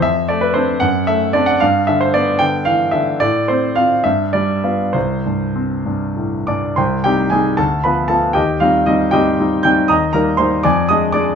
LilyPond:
<<
  \new Staff \with { instrumentName = "Grand piano" } { \time 6/8 \key c \major \tempo 4. = 76 e''8 d''16 b'16 c''8 fis''8 e''8 d''16 fis''16 | f''8 e''16 c''16 d''8 g''8 f''8 e''8 | d''8 c''8 f''8 e''8 d''4 | c''4. r4 <d'' d'''>8 |
\key c \minor <c'' g'' c'''>8 <g' g''>8 <aes' aes''>8 <a' a''>8 <b' b''>8 <a' a''>8 | <g' ees'' g''>8 <f' f''>8 <ees' ees''>8 <g' ees'' g''>4 <g'' g'''>8 | <ees'' bes'' ees'''>8 <bes' bes''>8 <c'' c'''>8 <d'' aes'' d'''>8 <ees'' ees'''>8 <d'' d'''>8 | }
  \new Staff \with { instrumentName = "Grand piano" } { \time 6/8 \key c \major f,8 a8 <c' d'>8 fis,8 a8 <c' d'>8 | g,8 d8 b8 d8 e8 d8 | a,8 c'8 <c' f'>8 g,8 g8 <b f'>8 | c,8 g,8 c'8 g,8 a,8 g,8 |
\key c \minor c,8 <g c' ees'>8 <g c' ees'>8 d,8 <f b f'>8 <f b f'>8 | ees,8 <g c' ees'>8 <g c'>8 <g c' ees'>8 <g c' ees'>8 <g c' ees'>8 | ees,8 <g bes ees'>8 <g bes ees'>8 f,8 <aes d' aes'>8 <aes d' aes'>8 | }
>>